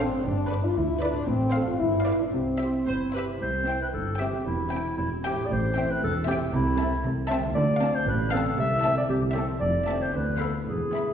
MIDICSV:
0, 0, Header, 1, 10, 480
1, 0, Start_track
1, 0, Key_signature, 0, "major"
1, 0, Tempo, 513259
1, 234, Time_signature, 2, 2, 24, 8
1, 1674, Tempo, 541516
1, 3114, Tempo, 523104
1, 4554, Tempo, 514580
1, 6956, Key_signature, 0, "minor"
1, 8874, Tempo, 534759
1, 10238, End_track
2, 0, Start_track
2, 0, Title_t, "Violin section"
2, 0, Program_c, 0, 48
2, 4, Note_on_c, 0, 77, 53
2, 178, Note_off_c, 0, 77, 0
2, 483, Note_on_c, 0, 74, 48
2, 655, Note_off_c, 0, 74, 0
2, 952, Note_on_c, 0, 74, 57
2, 1130, Note_off_c, 0, 74, 0
2, 1431, Note_on_c, 0, 77, 47
2, 1612, Note_off_c, 0, 77, 0
2, 1916, Note_on_c, 0, 77, 45
2, 2094, Note_off_c, 0, 77, 0
2, 2396, Note_on_c, 0, 76, 39
2, 2576, Note_off_c, 0, 76, 0
2, 2880, Note_on_c, 0, 76, 36
2, 3055, Note_off_c, 0, 76, 0
2, 3363, Note_on_c, 0, 79, 40
2, 3538, Note_off_c, 0, 79, 0
2, 3837, Note_on_c, 0, 79, 45
2, 4015, Note_off_c, 0, 79, 0
2, 4327, Note_on_c, 0, 79, 45
2, 4500, Note_off_c, 0, 79, 0
2, 4800, Note_on_c, 0, 79, 52
2, 4978, Note_off_c, 0, 79, 0
2, 5288, Note_on_c, 0, 79, 51
2, 5464, Note_off_c, 0, 79, 0
2, 5766, Note_on_c, 0, 79, 58
2, 5945, Note_off_c, 0, 79, 0
2, 6248, Note_on_c, 0, 81, 54
2, 6424, Note_off_c, 0, 81, 0
2, 6723, Note_on_c, 0, 81, 64
2, 6897, Note_off_c, 0, 81, 0
2, 7198, Note_on_c, 0, 81, 59
2, 7373, Note_off_c, 0, 81, 0
2, 7678, Note_on_c, 0, 81, 61
2, 7854, Note_off_c, 0, 81, 0
2, 8148, Note_on_c, 0, 81, 55
2, 8328, Note_off_c, 0, 81, 0
2, 8634, Note_on_c, 0, 81, 54
2, 8813, Note_off_c, 0, 81, 0
2, 9109, Note_on_c, 0, 81, 46
2, 9285, Note_off_c, 0, 81, 0
2, 9580, Note_on_c, 0, 83, 43
2, 9763, Note_off_c, 0, 83, 0
2, 10073, Note_on_c, 0, 83, 38
2, 10238, Note_off_c, 0, 83, 0
2, 10238, End_track
3, 0, Start_track
3, 0, Title_t, "Violin section"
3, 0, Program_c, 1, 48
3, 0, Note_on_c, 1, 72, 59
3, 175, Note_off_c, 1, 72, 0
3, 464, Note_on_c, 1, 71, 55
3, 645, Note_off_c, 1, 71, 0
3, 949, Note_on_c, 1, 71, 56
3, 1128, Note_off_c, 1, 71, 0
3, 1413, Note_on_c, 1, 72, 48
3, 1603, Note_off_c, 1, 72, 0
3, 1907, Note_on_c, 1, 74, 47
3, 2089, Note_off_c, 1, 74, 0
3, 2394, Note_on_c, 1, 72, 36
3, 2575, Note_off_c, 1, 72, 0
3, 2877, Note_on_c, 1, 72, 39
3, 3054, Note_off_c, 1, 72, 0
3, 3354, Note_on_c, 1, 76, 42
3, 3533, Note_off_c, 1, 76, 0
3, 3834, Note_on_c, 1, 76, 51
3, 4013, Note_off_c, 1, 76, 0
3, 4324, Note_on_c, 1, 76, 44
3, 4498, Note_off_c, 1, 76, 0
3, 4811, Note_on_c, 1, 76, 52
3, 4984, Note_off_c, 1, 76, 0
3, 5288, Note_on_c, 1, 76, 48
3, 5464, Note_off_c, 1, 76, 0
3, 5761, Note_on_c, 1, 76, 60
3, 5941, Note_off_c, 1, 76, 0
3, 6252, Note_on_c, 1, 76, 53
3, 6426, Note_off_c, 1, 76, 0
3, 6713, Note_on_c, 1, 76, 61
3, 6892, Note_off_c, 1, 76, 0
3, 7184, Note_on_c, 1, 77, 58
3, 7365, Note_off_c, 1, 77, 0
3, 7672, Note_on_c, 1, 77, 62
3, 7851, Note_off_c, 1, 77, 0
3, 8142, Note_on_c, 1, 76, 57
3, 8324, Note_off_c, 1, 76, 0
3, 8623, Note_on_c, 1, 76, 55
3, 8807, Note_off_c, 1, 76, 0
3, 9101, Note_on_c, 1, 76, 51
3, 9281, Note_off_c, 1, 76, 0
3, 9571, Note_on_c, 1, 77, 45
3, 9758, Note_off_c, 1, 77, 0
3, 10068, Note_on_c, 1, 76, 37
3, 10238, Note_off_c, 1, 76, 0
3, 10238, End_track
4, 0, Start_track
4, 0, Title_t, "Clarinet"
4, 0, Program_c, 2, 71
4, 2642, Note_on_c, 2, 64, 48
4, 2863, Note_off_c, 2, 64, 0
4, 2885, Note_on_c, 2, 67, 47
4, 2989, Note_off_c, 2, 67, 0
4, 3118, Note_on_c, 2, 72, 66
4, 3469, Note_off_c, 2, 72, 0
4, 3486, Note_on_c, 2, 71, 56
4, 3537, Note_off_c, 2, 71, 0
4, 3593, Note_on_c, 2, 69, 54
4, 3834, Note_on_c, 2, 67, 58
4, 3847, Note_off_c, 2, 69, 0
4, 4062, Note_off_c, 2, 67, 0
4, 4068, Note_on_c, 2, 64, 62
4, 4541, Note_off_c, 2, 64, 0
4, 4546, Note_on_c, 2, 64, 59
4, 4657, Note_off_c, 2, 64, 0
4, 4810, Note_on_c, 2, 67, 66
4, 4997, Note_on_c, 2, 74, 54
4, 5011, Note_off_c, 2, 67, 0
4, 5062, Note_on_c, 2, 72, 73
4, 5076, Note_off_c, 2, 74, 0
4, 5415, Note_on_c, 2, 71, 65
4, 5429, Note_off_c, 2, 72, 0
4, 5529, Note_off_c, 2, 71, 0
4, 5537, Note_on_c, 2, 69, 69
4, 5643, Note_off_c, 2, 69, 0
4, 5759, Note_on_c, 2, 67, 66
4, 5869, Note_off_c, 2, 67, 0
4, 6012, Note_on_c, 2, 64, 64
4, 6477, Note_off_c, 2, 64, 0
4, 6948, Note_on_c, 2, 74, 83
4, 7321, Note_on_c, 2, 72, 74
4, 7335, Note_off_c, 2, 74, 0
4, 7435, Note_off_c, 2, 72, 0
4, 7441, Note_on_c, 2, 71, 77
4, 7672, Note_off_c, 2, 71, 0
4, 7680, Note_on_c, 2, 69, 72
4, 7912, Note_off_c, 2, 69, 0
4, 7926, Note_on_c, 2, 76, 89
4, 8271, Note_off_c, 2, 76, 0
4, 8281, Note_on_c, 2, 74, 67
4, 8333, Note_off_c, 2, 74, 0
4, 8388, Note_on_c, 2, 67, 72
4, 8497, Note_off_c, 2, 67, 0
4, 8630, Note_on_c, 2, 69, 62
4, 8740, Note_off_c, 2, 69, 0
4, 8863, Note_on_c, 2, 74, 76
4, 9241, Note_on_c, 2, 72, 59
4, 9255, Note_off_c, 2, 74, 0
4, 9363, Note_on_c, 2, 71, 62
4, 9376, Note_off_c, 2, 72, 0
4, 9581, Note_off_c, 2, 71, 0
4, 9586, Note_on_c, 2, 69, 52
4, 9695, Note_off_c, 2, 69, 0
4, 9831, Note_on_c, 2, 68, 49
4, 10238, Note_off_c, 2, 68, 0
4, 10238, End_track
5, 0, Start_track
5, 0, Title_t, "French horn section"
5, 0, Program_c, 3, 60
5, 5, Note_on_c, 3, 60, 72
5, 239, Note_off_c, 3, 60, 0
5, 240, Note_on_c, 3, 62, 70
5, 587, Note_off_c, 3, 62, 0
5, 598, Note_on_c, 3, 65, 72
5, 713, Note_off_c, 3, 65, 0
5, 728, Note_on_c, 3, 64, 64
5, 958, Note_off_c, 3, 64, 0
5, 959, Note_on_c, 3, 62, 76
5, 1181, Note_on_c, 3, 60, 68
5, 1195, Note_off_c, 3, 62, 0
5, 1541, Note_off_c, 3, 60, 0
5, 1547, Note_on_c, 3, 65, 62
5, 1670, Note_off_c, 3, 65, 0
5, 1671, Note_on_c, 3, 64, 71
5, 2024, Note_off_c, 3, 64, 0
5, 2037, Note_on_c, 3, 62, 54
5, 2090, Note_off_c, 3, 62, 0
5, 2155, Note_on_c, 3, 60, 58
5, 2864, Note_off_c, 3, 60, 0
5, 10238, End_track
6, 0, Start_track
6, 0, Title_t, "Harp"
6, 0, Program_c, 4, 46
6, 0, Note_on_c, 4, 45, 47
6, 0, Note_on_c, 4, 60, 36
6, 0, Note_on_c, 4, 65, 37
6, 0, Note_on_c, 4, 72, 38
6, 59, Note_on_c, 4, 43, 47
6, 98, Note_on_c, 4, 59, 39
6, 141, Note_on_c, 4, 62, 39
6, 162, Note_off_c, 4, 45, 0
6, 182, Note_off_c, 4, 60, 0
6, 184, Note_on_c, 4, 67, 37
6, 204, Note_off_c, 4, 65, 0
6, 225, Note_off_c, 4, 72, 0
6, 1021, Note_on_c, 4, 45, 43
6, 1062, Note_on_c, 4, 60, 39
6, 1102, Note_on_c, 4, 65, 36
6, 1121, Note_off_c, 4, 43, 0
6, 1141, Note_off_c, 4, 59, 0
6, 1145, Note_on_c, 4, 72, 39
6, 1162, Note_off_c, 4, 62, 0
6, 1184, Note_off_c, 4, 67, 0
6, 1507, Note_on_c, 4, 43, 46
6, 1549, Note_on_c, 4, 62, 37
6, 1579, Note_off_c, 4, 65, 0
6, 1590, Note_on_c, 4, 65, 36
6, 1611, Note_off_c, 4, 45, 0
6, 1631, Note_off_c, 4, 60, 0
6, 1632, Note_on_c, 4, 71, 38
6, 1673, Note_off_c, 4, 72, 0
6, 1997, Note_on_c, 4, 48, 36
6, 2035, Note_on_c, 4, 60, 28
6, 2074, Note_on_c, 4, 64, 30
6, 2094, Note_off_c, 4, 43, 0
6, 2113, Note_on_c, 4, 72, 28
6, 2114, Note_off_c, 4, 62, 0
6, 2133, Note_off_c, 4, 65, 0
6, 2153, Note_off_c, 4, 71, 0
6, 2950, Note_off_c, 4, 48, 0
6, 2961, Note_on_c, 4, 48, 37
6, 2986, Note_off_c, 4, 60, 0
6, 2997, Note_on_c, 4, 60, 33
6, 3029, Note_off_c, 4, 64, 0
6, 3039, Note_on_c, 4, 64, 31
6, 3077, Note_on_c, 4, 67, 32
6, 3908, Note_on_c, 4, 52, 39
6, 3942, Note_off_c, 4, 60, 0
6, 3953, Note_on_c, 4, 60, 33
6, 3985, Note_off_c, 4, 64, 0
6, 3996, Note_on_c, 4, 64, 32
6, 4015, Note_off_c, 4, 48, 0
6, 4022, Note_off_c, 4, 67, 0
6, 4033, Note_on_c, 4, 67, 33
6, 4868, Note_on_c, 4, 45, 46
6, 4896, Note_off_c, 4, 60, 0
6, 4907, Note_on_c, 4, 60, 36
6, 4940, Note_off_c, 4, 64, 0
6, 4952, Note_on_c, 4, 64, 39
6, 4972, Note_off_c, 4, 52, 0
6, 4984, Note_off_c, 4, 67, 0
6, 4995, Note_on_c, 4, 67, 37
6, 5674, Note_off_c, 4, 72, 0
6, 5823, Note_on_c, 4, 48, 50
6, 5856, Note_off_c, 4, 60, 0
6, 5867, Note_on_c, 4, 60, 40
6, 5897, Note_off_c, 4, 64, 0
6, 5908, Note_on_c, 4, 64, 41
6, 5940, Note_off_c, 4, 45, 0
6, 5949, Note_on_c, 4, 69, 45
6, 6003, Note_off_c, 4, 67, 0
6, 6781, Note_on_c, 4, 50, 51
6, 6813, Note_off_c, 4, 60, 0
6, 6825, Note_on_c, 4, 60, 41
6, 6866, Note_on_c, 4, 65, 44
6, 6884, Note_off_c, 4, 48, 0
6, 6899, Note_off_c, 4, 69, 0
6, 6910, Note_on_c, 4, 69, 41
6, 6926, Note_off_c, 4, 64, 0
6, 7750, Note_on_c, 4, 48, 54
6, 7781, Note_off_c, 4, 60, 0
6, 7793, Note_on_c, 4, 60, 39
6, 7833, Note_on_c, 4, 64, 42
6, 7844, Note_off_c, 4, 50, 0
6, 7865, Note_off_c, 4, 69, 0
6, 7876, Note_on_c, 4, 69, 40
6, 7887, Note_off_c, 4, 65, 0
6, 8710, Note_on_c, 4, 53, 47
6, 8742, Note_off_c, 4, 60, 0
6, 8754, Note_on_c, 4, 60, 38
6, 8782, Note_off_c, 4, 64, 0
6, 8793, Note_on_c, 4, 64, 36
6, 8812, Note_off_c, 4, 48, 0
6, 8824, Note_off_c, 4, 69, 0
6, 8835, Note_on_c, 4, 69, 35
6, 9193, Note_on_c, 4, 50, 44
6, 9232, Note_on_c, 4, 59, 37
6, 9272, Note_on_c, 4, 65, 38
6, 9307, Note_off_c, 4, 60, 0
6, 9313, Note_on_c, 4, 71, 39
6, 9326, Note_off_c, 4, 64, 0
6, 9346, Note_off_c, 4, 69, 0
6, 9667, Note_on_c, 4, 52, 34
6, 9698, Note_off_c, 4, 59, 0
6, 9708, Note_on_c, 4, 59, 28
6, 9747, Note_on_c, 4, 64, 28
6, 9769, Note_off_c, 4, 53, 0
6, 9771, Note_off_c, 4, 50, 0
6, 9778, Note_off_c, 4, 71, 0
6, 9789, Note_on_c, 4, 71, 27
6, 9810, Note_off_c, 4, 65, 0
6, 10238, Note_off_c, 4, 52, 0
6, 10238, Note_off_c, 4, 59, 0
6, 10238, Note_off_c, 4, 64, 0
6, 10238, Note_off_c, 4, 71, 0
6, 10238, End_track
7, 0, Start_track
7, 0, Title_t, "Viola section"
7, 0, Program_c, 5, 48
7, 2, Note_on_c, 5, 69, 53
7, 176, Note_off_c, 5, 69, 0
7, 469, Note_on_c, 5, 71, 51
7, 648, Note_off_c, 5, 71, 0
7, 950, Note_on_c, 5, 71, 58
7, 1129, Note_off_c, 5, 71, 0
7, 1440, Note_on_c, 5, 69, 47
7, 1617, Note_off_c, 5, 69, 0
7, 1914, Note_on_c, 5, 71, 46
7, 2093, Note_off_c, 5, 71, 0
7, 2412, Note_on_c, 5, 67, 36
7, 2585, Note_off_c, 5, 67, 0
7, 2632, Note_on_c, 5, 72, 44
7, 2703, Note_off_c, 5, 72, 0
7, 2878, Note_on_c, 5, 71, 40
7, 2949, Note_off_c, 5, 71, 0
7, 3347, Note_on_c, 5, 60, 43
7, 3529, Note_off_c, 5, 60, 0
7, 3842, Note_on_c, 5, 60, 49
7, 4017, Note_off_c, 5, 60, 0
7, 4321, Note_on_c, 5, 60, 41
7, 4496, Note_off_c, 5, 60, 0
7, 4796, Note_on_c, 5, 60, 49
7, 4976, Note_off_c, 5, 60, 0
7, 5291, Note_on_c, 5, 60, 53
7, 5466, Note_off_c, 5, 60, 0
7, 5769, Note_on_c, 5, 60, 60
7, 5946, Note_off_c, 5, 60, 0
7, 6242, Note_on_c, 5, 60, 57
7, 6421, Note_off_c, 5, 60, 0
7, 6722, Note_on_c, 5, 60, 65
7, 6896, Note_off_c, 5, 60, 0
7, 7199, Note_on_c, 5, 60, 57
7, 7373, Note_off_c, 5, 60, 0
7, 7678, Note_on_c, 5, 60, 62
7, 7854, Note_off_c, 5, 60, 0
7, 8161, Note_on_c, 5, 60, 56
7, 8335, Note_off_c, 5, 60, 0
7, 8639, Note_on_c, 5, 60, 52
7, 8816, Note_off_c, 5, 60, 0
7, 9130, Note_on_c, 5, 60, 48
7, 9296, Note_off_c, 5, 60, 0
7, 9587, Note_on_c, 5, 59, 43
7, 9767, Note_off_c, 5, 59, 0
7, 10072, Note_on_c, 5, 59, 40
7, 10238, Note_off_c, 5, 59, 0
7, 10238, End_track
8, 0, Start_track
8, 0, Title_t, "Cello section"
8, 0, Program_c, 6, 48
8, 0, Note_on_c, 6, 45, 61
8, 133, Note_off_c, 6, 45, 0
8, 225, Note_on_c, 6, 43, 65
8, 605, Note_off_c, 6, 43, 0
8, 704, Note_on_c, 6, 38, 60
8, 1086, Note_off_c, 6, 38, 0
8, 1189, Note_on_c, 6, 45, 64
8, 1572, Note_off_c, 6, 45, 0
8, 1676, Note_on_c, 6, 43, 56
8, 2053, Note_off_c, 6, 43, 0
8, 2145, Note_on_c, 6, 48, 51
8, 2532, Note_off_c, 6, 48, 0
8, 2634, Note_on_c, 6, 43, 42
8, 3013, Note_off_c, 6, 43, 0
8, 3108, Note_on_c, 6, 48, 56
8, 3490, Note_off_c, 6, 48, 0
8, 3589, Note_on_c, 6, 43, 52
8, 3972, Note_off_c, 6, 43, 0
8, 4073, Note_on_c, 6, 40, 60
8, 4453, Note_off_c, 6, 40, 0
8, 4547, Note_on_c, 6, 40, 53
8, 4932, Note_off_c, 6, 40, 0
8, 5033, Note_on_c, 6, 45, 63
8, 5418, Note_off_c, 6, 45, 0
8, 5527, Note_on_c, 6, 40, 64
8, 5907, Note_off_c, 6, 40, 0
8, 6003, Note_on_c, 6, 48, 70
8, 6382, Note_off_c, 6, 48, 0
8, 6474, Note_on_c, 6, 48, 64
8, 6852, Note_off_c, 6, 48, 0
8, 6956, Note_on_c, 6, 50, 76
8, 7331, Note_off_c, 6, 50, 0
8, 7430, Note_on_c, 6, 45, 64
8, 7811, Note_off_c, 6, 45, 0
8, 7900, Note_on_c, 6, 48, 69
8, 8284, Note_off_c, 6, 48, 0
8, 8383, Note_on_c, 6, 48, 67
8, 8768, Note_off_c, 6, 48, 0
8, 8871, Note_on_c, 6, 41, 59
8, 9245, Note_off_c, 6, 41, 0
8, 9347, Note_on_c, 6, 38, 51
8, 9727, Note_off_c, 6, 38, 0
8, 9827, Note_on_c, 6, 40, 51
8, 10212, Note_off_c, 6, 40, 0
8, 10238, End_track
9, 0, Start_track
9, 0, Title_t, "Double bass section"
9, 0, Program_c, 7, 48
9, 0, Note_on_c, 7, 33, 59
9, 130, Note_off_c, 7, 33, 0
9, 220, Note_on_c, 7, 31, 70
9, 603, Note_off_c, 7, 31, 0
9, 711, Note_on_c, 7, 38, 64
9, 1089, Note_off_c, 7, 38, 0
9, 1194, Note_on_c, 7, 33, 67
9, 1575, Note_off_c, 7, 33, 0
9, 1676, Note_on_c, 7, 31, 54
9, 2053, Note_off_c, 7, 31, 0
9, 2154, Note_on_c, 7, 36, 50
9, 2537, Note_off_c, 7, 36, 0
9, 2641, Note_on_c, 7, 31, 42
9, 3017, Note_off_c, 7, 31, 0
9, 3118, Note_on_c, 7, 36, 56
9, 3496, Note_off_c, 7, 36, 0
9, 3590, Note_on_c, 7, 31, 49
9, 3972, Note_off_c, 7, 31, 0
9, 4070, Note_on_c, 7, 28, 61
9, 4451, Note_off_c, 7, 28, 0
9, 4553, Note_on_c, 7, 28, 54
9, 4936, Note_off_c, 7, 28, 0
9, 5033, Note_on_c, 7, 33, 63
9, 5418, Note_off_c, 7, 33, 0
9, 5526, Note_on_c, 7, 28, 63
9, 5906, Note_off_c, 7, 28, 0
9, 6009, Note_on_c, 7, 36, 72
9, 6386, Note_off_c, 7, 36, 0
9, 6484, Note_on_c, 7, 36, 66
9, 6858, Note_off_c, 7, 36, 0
9, 6956, Note_on_c, 7, 38, 78
9, 7331, Note_off_c, 7, 38, 0
9, 7425, Note_on_c, 7, 33, 75
9, 7808, Note_off_c, 7, 33, 0
9, 7902, Note_on_c, 7, 36, 77
9, 8285, Note_off_c, 7, 36, 0
9, 8386, Note_on_c, 7, 36, 61
9, 8769, Note_off_c, 7, 36, 0
9, 8875, Note_on_c, 7, 29, 65
9, 9247, Note_off_c, 7, 29, 0
9, 9341, Note_on_c, 7, 38, 49
9, 9724, Note_off_c, 7, 38, 0
9, 9828, Note_on_c, 7, 28, 52
9, 10213, Note_off_c, 7, 28, 0
9, 10238, End_track
10, 0, Start_track
10, 0, Title_t, "Tuba"
10, 0, Program_c, 8, 58
10, 3111, Note_on_c, 8, 36, 52
10, 3492, Note_off_c, 8, 36, 0
10, 3589, Note_on_c, 8, 31, 52
10, 3972, Note_off_c, 8, 31, 0
10, 4067, Note_on_c, 8, 28, 55
10, 4450, Note_off_c, 8, 28, 0
10, 4546, Note_on_c, 8, 28, 54
10, 4932, Note_off_c, 8, 28, 0
10, 5036, Note_on_c, 8, 33, 59
10, 5420, Note_off_c, 8, 33, 0
10, 5519, Note_on_c, 8, 28, 60
10, 5903, Note_off_c, 8, 28, 0
10, 5996, Note_on_c, 8, 36, 66
10, 6378, Note_off_c, 8, 36, 0
10, 6482, Note_on_c, 8, 36, 70
10, 6857, Note_off_c, 8, 36, 0
10, 6951, Note_on_c, 8, 38, 70
10, 7328, Note_off_c, 8, 38, 0
10, 7425, Note_on_c, 8, 33, 66
10, 7808, Note_off_c, 8, 33, 0
10, 7905, Note_on_c, 8, 36, 64
10, 8287, Note_off_c, 8, 36, 0
10, 8387, Note_on_c, 8, 36, 63
10, 8770, Note_off_c, 8, 36, 0
10, 8874, Note_on_c, 8, 29, 58
10, 9247, Note_off_c, 8, 29, 0
10, 9348, Note_on_c, 8, 38, 51
10, 9727, Note_off_c, 8, 38, 0
10, 9822, Note_on_c, 8, 28, 45
10, 10210, Note_off_c, 8, 28, 0
10, 10238, End_track
0, 0, End_of_file